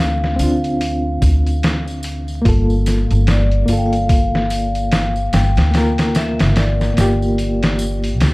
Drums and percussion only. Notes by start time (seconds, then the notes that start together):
0.24 snare
0.39 open hi-hat, tambourine
0.64 closed hi-hat, tambourine
0.81 open hi-hat, tambourine
1.22 kick, open hi-hat, tambourine
1.47 closed hi-hat, tambourine
1.63 snare, open hi-hat, tambourine
1.88 tambourine
2.03 open hi-hat, tambourine
2.28 tambourine
2.45 kick, open hi-hat, tambourine
2.70 tambourine
2.86 snare, open hi-hat, tambourine
3.11 closed hi-hat, tambourine
3.27 snare, open hi-hat, tambourine
3.52 closed hi-hat
3.68 open hi-hat, tambourine
3.93 closed hi-hat, tambourine
4.09 kick, open hi-hat, tambourine
4.35 snare
4.50 open hi-hat, tambourine
4.75 closed hi-hat, tambourine
4.92 snare, open hi-hat, tambourine
5.16 tambourine
5.33 snare, open hi-hat, tambourine
5.57 snare, open hi-hat, tambourine
5.74 snare, open hi-hat, tambourine
5.98 snare, open hi-hat, tambourine
6.15 snare, open hi-hat, tambourine
6.39 snare, open hi-hat, tambourine
6.56 snare, open hi-hat, tambourine
6.81 snare, tambourine
6.97 snare, open hi-hat, tambourine
7.22 tambourine
7.38 open hi-hat, tambourine
7.63 snare, open hi-hat, tambourine
7.79 tambourine
8.04 open hi-hat, tambourine
8.20 snare, open hi-hat, tambourine